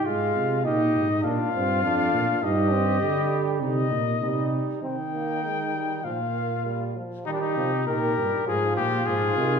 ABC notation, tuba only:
X:1
M:4/4
L:1/8
Q:1/4=100
K:Bbdor
V:1 name="Tuba" clef=bass
A,, C, B,, A,, B,, G,, F,, B,, | [K:Eb] G,,2 D,2 C, B,, C, z | E,4 B,,3 z | E, C, B,, G,, A,, B,, A,, C, |]